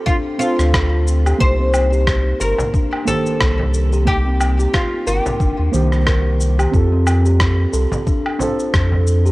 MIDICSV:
0, 0, Header, 1, 8, 480
1, 0, Start_track
1, 0, Tempo, 666667
1, 1009, Time_signature, 4, 2, 24, 8
1, 6710, End_track
2, 0, Start_track
2, 0, Title_t, "Singing bowl"
2, 0, Program_c, 0, 14
2, 0, Note_on_c, 0, 72, 69
2, 6710, Note_off_c, 0, 72, 0
2, 6710, End_track
3, 0, Start_track
3, 0, Title_t, "Oud"
3, 0, Program_c, 1, 24
3, 42, Note_on_c, 1, 65, 100
3, 108, Note_off_c, 1, 65, 0
3, 281, Note_on_c, 1, 65, 86
3, 737, Note_off_c, 1, 65, 0
3, 1009, Note_on_c, 1, 72, 111
3, 1732, Note_off_c, 1, 72, 0
3, 1735, Note_on_c, 1, 70, 102
3, 2210, Note_off_c, 1, 70, 0
3, 2213, Note_on_c, 1, 69, 105
3, 2928, Note_off_c, 1, 69, 0
3, 2931, Note_on_c, 1, 67, 102
3, 3406, Note_off_c, 1, 67, 0
3, 3408, Note_on_c, 1, 65, 84
3, 3649, Note_off_c, 1, 65, 0
3, 3652, Note_on_c, 1, 67, 89
3, 4582, Note_off_c, 1, 67, 0
3, 6710, End_track
4, 0, Start_track
4, 0, Title_t, "Steel tongue drum"
4, 0, Program_c, 2, 114
4, 51, Note_on_c, 2, 62, 80
4, 179, Note_off_c, 2, 62, 0
4, 291, Note_on_c, 2, 72, 74
4, 520, Note_off_c, 2, 72, 0
4, 530, Note_on_c, 2, 69, 79
4, 892, Note_off_c, 2, 69, 0
4, 905, Note_on_c, 2, 67, 77
4, 1010, Note_off_c, 2, 67, 0
4, 1144, Note_on_c, 2, 60, 81
4, 1244, Note_off_c, 2, 60, 0
4, 1385, Note_on_c, 2, 67, 72
4, 1719, Note_off_c, 2, 67, 0
4, 1730, Note_on_c, 2, 70, 101
4, 1959, Note_off_c, 2, 70, 0
4, 1971, Note_on_c, 2, 62, 79
4, 2099, Note_off_c, 2, 62, 0
4, 2212, Note_on_c, 2, 72, 81
4, 2440, Note_off_c, 2, 72, 0
4, 2450, Note_on_c, 2, 58, 83
4, 2812, Note_off_c, 2, 58, 0
4, 2829, Note_on_c, 2, 67, 84
4, 3053, Note_off_c, 2, 67, 0
4, 3068, Note_on_c, 2, 60, 75
4, 3166, Note_off_c, 2, 60, 0
4, 3306, Note_on_c, 2, 67, 75
4, 3640, Note_off_c, 2, 67, 0
4, 3650, Note_on_c, 2, 70, 110
4, 3879, Note_off_c, 2, 70, 0
4, 3889, Note_on_c, 2, 62, 79
4, 4018, Note_off_c, 2, 62, 0
4, 4128, Note_on_c, 2, 72, 79
4, 4358, Note_off_c, 2, 72, 0
4, 4370, Note_on_c, 2, 70, 89
4, 4732, Note_off_c, 2, 70, 0
4, 4744, Note_on_c, 2, 67, 86
4, 4849, Note_off_c, 2, 67, 0
4, 4984, Note_on_c, 2, 60, 83
4, 5084, Note_off_c, 2, 60, 0
4, 5225, Note_on_c, 2, 67, 79
4, 5559, Note_off_c, 2, 67, 0
4, 5570, Note_on_c, 2, 69, 104
4, 5800, Note_off_c, 2, 69, 0
4, 5808, Note_on_c, 2, 62, 82
4, 5938, Note_off_c, 2, 62, 0
4, 6050, Note_on_c, 2, 72, 79
4, 6280, Note_off_c, 2, 72, 0
4, 6289, Note_on_c, 2, 69, 82
4, 6651, Note_off_c, 2, 69, 0
4, 6664, Note_on_c, 2, 67, 84
4, 6710, Note_off_c, 2, 67, 0
4, 6710, End_track
5, 0, Start_track
5, 0, Title_t, "Synth keys"
5, 0, Program_c, 3, 88
5, 0, Note_on_c, 3, 60, 96
5, 0, Note_on_c, 3, 65, 85
5, 0, Note_on_c, 3, 69, 104
5, 256, Note_off_c, 3, 60, 0
5, 263, Note_off_c, 3, 65, 0
5, 270, Note_off_c, 3, 69, 0
5, 275, Note_on_c, 3, 60, 98
5, 290, Note_on_c, 3, 65, 88
5, 303, Note_on_c, 3, 69, 105
5, 977, Note_off_c, 3, 60, 0
5, 985, Note_off_c, 3, 65, 0
5, 991, Note_off_c, 3, 69, 0
5, 995, Note_on_c, 3, 58, 96
5, 1010, Note_on_c, 3, 63, 86
5, 1023, Note_on_c, 3, 67, 99
5, 2177, Note_off_c, 3, 58, 0
5, 2185, Note_off_c, 3, 63, 0
5, 2192, Note_off_c, 3, 67, 0
5, 2195, Note_on_c, 3, 58, 103
5, 2210, Note_on_c, 3, 51, 90
5, 2226, Note_on_c, 3, 67, 104
5, 2897, Note_off_c, 3, 58, 0
5, 2905, Note_off_c, 3, 51, 0
5, 2913, Note_off_c, 3, 67, 0
5, 2917, Note_on_c, 3, 58, 97
5, 2932, Note_on_c, 3, 63, 88
5, 2945, Note_on_c, 3, 67, 106
5, 4098, Note_off_c, 3, 58, 0
5, 4106, Note_off_c, 3, 63, 0
5, 4112, Note_off_c, 3, 67, 0
5, 4116, Note_on_c, 3, 58, 96
5, 4130, Note_on_c, 3, 51, 90
5, 4146, Note_on_c, 3, 67, 112
5, 4818, Note_off_c, 3, 58, 0
5, 4825, Note_off_c, 3, 51, 0
5, 4832, Note_off_c, 3, 67, 0
5, 4835, Note_on_c, 3, 60, 92
5, 4850, Note_on_c, 3, 65, 84
5, 4864, Note_on_c, 3, 69, 107
5, 6017, Note_off_c, 3, 60, 0
5, 6025, Note_off_c, 3, 65, 0
5, 6032, Note_off_c, 3, 69, 0
5, 6036, Note_on_c, 3, 60, 95
5, 6051, Note_on_c, 3, 65, 93
5, 6066, Note_on_c, 3, 69, 110
5, 6710, Note_off_c, 3, 60, 0
5, 6710, Note_off_c, 3, 65, 0
5, 6710, Note_off_c, 3, 69, 0
5, 6710, End_track
6, 0, Start_track
6, 0, Title_t, "Sub bass"
6, 0, Program_c, 4, 38
6, 422, Note_on_c, 4, 38, 100
6, 959, Note_off_c, 4, 38, 0
6, 1010, Note_on_c, 4, 36, 99
6, 1680, Note_off_c, 4, 36, 0
6, 1729, Note_on_c, 4, 31, 100
6, 1825, Note_off_c, 4, 31, 0
6, 2451, Note_on_c, 4, 36, 97
6, 3361, Note_off_c, 4, 36, 0
6, 3647, Note_on_c, 4, 31, 105
6, 3744, Note_off_c, 4, 31, 0
6, 3889, Note_on_c, 4, 31, 100
6, 3985, Note_off_c, 4, 31, 0
6, 4025, Note_on_c, 4, 39, 94
6, 4099, Note_off_c, 4, 39, 0
6, 4130, Note_on_c, 4, 36, 99
6, 4801, Note_off_c, 4, 36, 0
6, 4849, Note_on_c, 4, 41, 101
6, 5520, Note_off_c, 4, 41, 0
6, 5568, Note_on_c, 4, 36, 94
6, 5664, Note_off_c, 4, 36, 0
6, 6289, Note_on_c, 4, 41, 99
6, 6710, Note_off_c, 4, 41, 0
6, 6710, End_track
7, 0, Start_track
7, 0, Title_t, "Frame drum"
7, 1859, Note_on_c, 9, 64, 98
7, 1931, Note_off_c, 9, 64, 0
7, 2211, Note_on_c, 9, 64, 92
7, 2283, Note_off_c, 9, 64, 0
7, 2586, Note_on_c, 9, 64, 91
7, 2658, Note_off_c, 9, 64, 0
7, 3786, Note_on_c, 9, 64, 89
7, 3858, Note_off_c, 9, 64, 0
7, 5702, Note_on_c, 9, 64, 94
7, 5774, Note_off_c, 9, 64, 0
7, 6041, Note_on_c, 9, 64, 93
7, 6113, Note_off_c, 9, 64, 0
7, 6422, Note_on_c, 9, 64, 85
7, 6494, Note_off_c, 9, 64, 0
7, 6710, End_track
8, 0, Start_track
8, 0, Title_t, "Drums"
8, 49, Note_on_c, 9, 36, 106
8, 54, Note_on_c, 9, 82, 34
8, 121, Note_off_c, 9, 36, 0
8, 126, Note_off_c, 9, 82, 0
8, 293, Note_on_c, 9, 82, 77
8, 365, Note_off_c, 9, 82, 0
8, 425, Note_on_c, 9, 37, 31
8, 428, Note_on_c, 9, 82, 48
8, 497, Note_off_c, 9, 37, 0
8, 500, Note_off_c, 9, 82, 0
8, 529, Note_on_c, 9, 36, 117
8, 531, Note_on_c, 9, 37, 99
8, 534, Note_on_c, 9, 82, 32
8, 601, Note_off_c, 9, 36, 0
8, 603, Note_off_c, 9, 37, 0
8, 606, Note_off_c, 9, 82, 0
8, 773, Note_on_c, 9, 82, 83
8, 845, Note_off_c, 9, 82, 0
8, 907, Note_on_c, 9, 77, 55
8, 910, Note_on_c, 9, 82, 49
8, 979, Note_off_c, 9, 77, 0
8, 982, Note_off_c, 9, 82, 0
8, 1010, Note_on_c, 9, 36, 106
8, 1013, Note_on_c, 9, 82, 35
8, 1082, Note_off_c, 9, 36, 0
8, 1085, Note_off_c, 9, 82, 0
8, 1250, Note_on_c, 9, 77, 77
8, 1252, Note_on_c, 9, 82, 75
8, 1322, Note_off_c, 9, 77, 0
8, 1324, Note_off_c, 9, 82, 0
8, 1389, Note_on_c, 9, 82, 47
8, 1461, Note_off_c, 9, 82, 0
8, 1490, Note_on_c, 9, 36, 104
8, 1492, Note_on_c, 9, 37, 98
8, 1495, Note_on_c, 9, 82, 32
8, 1562, Note_off_c, 9, 36, 0
8, 1564, Note_off_c, 9, 37, 0
8, 1567, Note_off_c, 9, 82, 0
8, 1734, Note_on_c, 9, 82, 82
8, 1806, Note_off_c, 9, 82, 0
8, 1870, Note_on_c, 9, 82, 47
8, 1942, Note_off_c, 9, 82, 0
8, 1970, Note_on_c, 9, 36, 110
8, 1973, Note_on_c, 9, 82, 35
8, 2042, Note_off_c, 9, 36, 0
8, 2045, Note_off_c, 9, 82, 0
8, 2105, Note_on_c, 9, 77, 59
8, 2177, Note_off_c, 9, 77, 0
8, 2213, Note_on_c, 9, 82, 81
8, 2285, Note_off_c, 9, 82, 0
8, 2349, Note_on_c, 9, 82, 46
8, 2421, Note_off_c, 9, 82, 0
8, 2450, Note_on_c, 9, 36, 109
8, 2451, Note_on_c, 9, 37, 102
8, 2453, Note_on_c, 9, 82, 35
8, 2522, Note_off_c, 9, 36, 0
8, 2523, Note_off_c, 9, 37, 0
8, 2525, Note_off_c, 9, 82, 0
8, 2692, Note_on_c, 9, 82, 82
8, 2764, Note_off_c, 9, 82, 0
8, 2828, Note_on_c, 9, 82, 42
8, 2900, Note_off_c, 9, 82, 0
8, 2930, Note_on_c, 9, 36, 111
8, 2933, Note_on_c, 9, 82, 32
8, 3002, Note_off_c, 9, 36, 0
8, 3005, Note_off_c, 9, 82, 0
8, 3172, Note_on_c, 9, 77, 85
8, 3174, Note_on_c, 9, 82, 77
8, 3244, Note_off_c, 9, 77, 0
8, 3246, Note_off_c, 9, 82, 0
8, 3310, Note_on_c, 9, 82, 44
8, 3382, Note_off_c, 9, 82, 0
8, 3410, Note_on_c, 9, 36, 103
8, 3412, Note_on_c, 9, 37, 97
8, 3414, Note_on_c, 9, 82, 34
8, 3482, Note_off_c, 9, 36, 0
8, 3484, Note_off_c, 9, 37, 0
8, 3486, Note_off_c, 9, 82, 0
8, 3653, Note_on_c, 9, 82, 74
8, 3725, Note_off_c, 9, 82, 0
8, 3789, Note_on_c, 9, 82, 44
8, 3861, Note_off_c, 9, 82, 0
8, 3890, Note_on_c, 9, 36, 104
8, 3893, Note_on_c, 9, 82, 33
8, 3962, Note_off_c, 9, 36, 0
8, 3965, Note_off_c, 9, 82, 0
8, 4132, Note_on_c, 9, 82, 79
8, 4204, Note_off_c, 9, 82, 0
8, 4265, Note_on_c, 9, 37, 30
8, 4267, Note_on_c, 9, 82, 45
8, 4337, Note_off_c, 9, 37, 0
8, 4339, Note_off_c, 9, 82, 0
8, 4369, Note_on_c, 9, 37, 92
8, 4370, Note_on_c, 9, 36, 105
8, 4371, Note_on_c, 9, 82, 31
8, 4441, Note_off_c, 9, 37, 0
8, 4442, Note_off_c, 9, 36, 0
8, 4443, Note_off_c, 9, 82, 0
8, 4612, Note_on_c, 9, 82, 84
8, 4684, Note_off_c, 9, 82, 0
8, 4745, Note_on_c, 9, 77, 60
8, 4748, Note_on_c, 9, 82, 41
8, 4817, Note_off_c, 9, 77, 0
8, 4820, Note_off_c, 9, 82, 0
8, 4849, Note_on_c, 9, 36, 110
8, 4852, Note_on_c, 9, 82, 33
8, 4921, Note_off_c, 9, 36, 0
8, 4924, Note_off_c, 9, 82, 0
8, 5089, Note_on_c, 9, 77, 86
8, 5091, Note_on_c, 9, 82, 78
8, 5161, Note_off_c, 9, 77, 0
8, 5163, Note_off_c, 9, 82, 0
8, 5226, Note_on_c, 9, 82, 43
8, 5298, Note_off_c, 9, 82, 0
8, 5328, Note_on_c, 9, 37, 93
8, 5329, Note_on_c, 9, 36, 97
8, 5331, Note_on_c, 9, 82, 33
8, 5400, Note_off_c, 9, 37, 0
8, 5401, Note_off_c, 9, 36, 0
8, 5403, Note_off_c, 9, 82, 0
8, 5571, Note_on_c, 9, 82, 79
8, 5643, Note_off_c, 9, 82, 0
8, 5708, Note_on_c, 9, 82, 42
8, 5780, Note_off_c, 9, 82, 0
8, 5810, Note_on_c, 9, 36, 99
8, 5812, Note_on_c, 9, 82, 33
8, 5882, Note_off_c, 9, 36, 0
8, 5884, Note_off_c, 9, 82, 0
8, 5946, Note_on_c, 9, 77, 67
8, 6018, Note_off_c, 9, 77, 0
8, 6053, Note_on_c, 9, 82, 77
8, 6125, Note_off_c, 9, 82, 0
8, 6189, Note_on_c, 9, 82, 43
8, 6261, Note_off_c, 9, 82, 0
8, 6291, Note_on_c, 9, 36, 106
8, 6291, Note_on_c, 9, 37, 99
8, 6294, Note_on_c, 9, 82, 30
8, 6363, Note_off_c, 9, 36, 0
8, 6363, Note_off_c, 9, 37, 0
8, 6366, Note_off_c, 9, 82, 0
8, 6532, Note_on_c, 9, 82, 74
8, 6604, Note_off_c, 9, 82, 0
8, 6668, Note_on_c, 9, 82, 43
8, 6710, Note_off_c, 9, 82, 0
8, 6710, End_track
0, 0, End_of_file